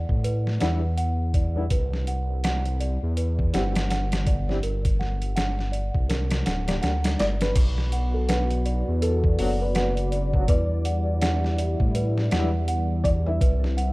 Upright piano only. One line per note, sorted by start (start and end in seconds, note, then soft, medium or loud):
0.60 0.78 G3 medium
0.60 0.78 B3 medium
0.60 0.79 D4 medium
0.60 0.79 E4 loud
1.55 1.63 G3 medium
1.55 1.63 B3 medium
1.55 1.64 D4 medium
1.55 1.64 E4 medium
3.53 3.71 G3 medium
3.53 3.71 C4 medium
3.53 3.71 E4 medium
3.53 3.72 G4 loud
4.48 4.56 G3 medium
4.48 4.56 C4 medium
4.48 4.56 E4 medium
4.48 4.57 G4 medium
6.67 7.54 G3 medium
6.67 7.54 A#3 medium
6.67 7.55 D4 medium
6.67 7.55 G4 medium
9.39 9.56 F#3 medium
9.39 9.57 B3 medium
9.39 9.57 D4 medium
9.39 9.57 F#4 loud
10.34 10.41 F#3 medium
10.34 10.42 B3 medium
10.34 10.42 D4 medium
10.34 10.42 F#4 medium
12.31 12.49 G3 medium
12.31 12.49 B3 medium
12.31 12.49 D4 medium
12.31 12.50 E4 loud
13.26 13.34 G3 medium
13.26 13.34 B3 medium
13.26 13.34 D4 medium
13.26 13.35 E4 medium